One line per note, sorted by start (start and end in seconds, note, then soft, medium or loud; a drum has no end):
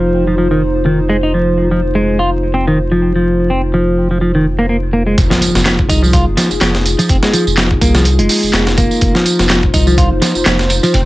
0.00 5.16 F1 medium
0.00 0.26 F3 medium
0.00 5.14 D#4 medium
0.00 5.14 F4 medium
0.00 5.17 C5 medium
0.27 0.37 F3 medium
0.38 0.50 F3 medium
0.51 0.61 D#3 medium
0.86 0.99 D#3 medium
1.09 1.16 G#3 medium
1.23 1.32 D#4 medium
1.34 1.70 F3 medium
1.71 1.80 F3 medium
1.95 2.18 G#3 medium
2.19 2.29 F4 medium
2.54 2.65 C4 medium
2.68 2.78 D#3 medium
2.92 3.14 F3 medium
3.16 3.49 F3 medium
3.50 3.61 C4 medium
3.74 4.10 F3 medium
4.11 4.20 F3 medium
4.21 4.34 F3 medium
4.35 4.45 D#3 medium
4.59 4.68 A#3 medium
4.69 4.76 A#3 medium
4.93 5.06 A#3 medium
5.07 5.15 G#3 medium
5.18 5.29 F1 loud
5.18 11.05 D#4 medium
5.18 11.05 F4 medium
5.18 9.01 G#4 medium
5.18 kick loud
5.18 closed hi-hat medium
5.18 tambourine soft
5.18 impact medium
5.30 5.64 F3 loud
5.30 snare soft
5.42 closed hi-hat medium
5.42 tambourine medium
5.55 5.87 F1 loud
5.55 snare soft
5.55 tambourine soft
5.65 5.76 F3 medium
5.65 snare loud
5.65 clap loud
5.65 closed hi-hat medium
5.79 kick medium
5.89 6.28 C2 medium
5.89 6.02 D#4 medium
5.89 kick medium
5.89 closed hi-hat medium
5.89 tambourine medium
6.02 6.13 F3 loud
6.02 tambourine soft
6.13 6.24 F4 medium
6.13 kick loud
6.13 closed hi-hat medium
6.13 tambourine soft
6.27 6.36 F1 medium
6.37 6.48 F3 loud
6.37 snare soft
6.37 closed hi-hat medium
6.37 tambourine medium
6.51 6.60 F1 soft
6.51 tambourine soft
6.61 6.96 F1 loud
6.61 6.72 F3 medium
6.61 snare loud
6.61 clap loud
6.61 closed hi-hat medium
6.75 snare soft
6.86 closed hi-hat medium
6.86 tambourine medium
6.99 7.09 F3 medium
6.99 closed hi-hat soft
6.99 tambourine soft
7.09 7.21 F1 loud
7.09 7.16 C4 medium
7.09 kick loud
7.09 closed hi-hat medium
7.09 tambourine soft
7.23 7.33 G#3 medium
7.23 snare medium
7.33 7.44 F3 loud
7.33 closed hi-hat medium
7.33 tambourine medium
7.47 7.79 F1 loud
7.47 tambourine soft
7.57 7.68 F3 medium
7.57 snare loud
7.57 clap loud
7.57 closed hi-hat medium
7.57 tambourine soft
7.71 kick medium
7.81 8.20 C2 medium
7.81 7.94 A#3 medium
7.81 kick medium
7.81 closed hi-hat medium
7.81 tambourine medium
7.95 8.05 F3 loud
7.95 snare soft
7.95 tambourine soft
8.05 closed hi-hat medium
8.05 tambourine soft
8.19 8.28 F1 medium
8.19 8.66 G#3 medium
8.19 closed hi-hat soft
8.29 open hi-hat medium
8.29 tambourine medium
8.43 8.52 F1 soft
8.43 tambourine soft
8.53 8.88 F1 loud
8.53 snare loud
8.53 clap loud
8.53 closed hi-hat medium
8.67 snare medium
8.77 9.14 A#3 medium
8.77 kick loud
8.77 closed hi-hat medium
8.77 tambourine medium
8.91 tambourine soft
9.01 9.13 F1 loud
9.01 11.05 C5 medium
9.01 kick loud
9.01 closed hi-hat medium
9.01 tambourine soft
9.15 9.48 F3 loud
9.15 snare soft
9.26 closed hi-hat medium
9.26 tambourine medium
9.39 9.71 F1 loud
9.39 snare soft
9.39 tambourine soft
9.50 9.60 F3 medium
9.50 snare loud
9.50 clap loud
9.50 closed hi-hat medium
9.63 kick medium
9.74 10.12 C2 medium
9.74 9.86 D#4 medium
9.74 kick loud
9.74 closed hi-hat medium
9.74 tambourine medium
9.87 9.97 F3 loud
9.87 tambourine soft
9.98 10.09 F4 medium
9.98 kick loud
9.98 closed hi-hat medium
9.98 tambourine soft
10.11 10.20 F1 medium
10.22 10.32 F3 loud
10.22 snare soft
10.22 closed hi-hat medium
10.22 tambourine medium
10.35 10.44 F1 soft
10.35 tambourine soft
10.46 10.80 F1 loud
10.46 10.57 F3 medium
10.46 snare loud
10.46 clap loud
10.46 closed hi-hat medium
10.59 snare soft
10.70 closed hi-hat medium
10.70 tambourine medium
10.83 10.93 F3 loud
10.83 closed hi-hat soft
10.83 tambourine soft
10.94 11.05 F1 loud
10.94 11.00 C4 medium
10.94 kick loud
10.94 closed hi-hat medium
10.94 tambourine soft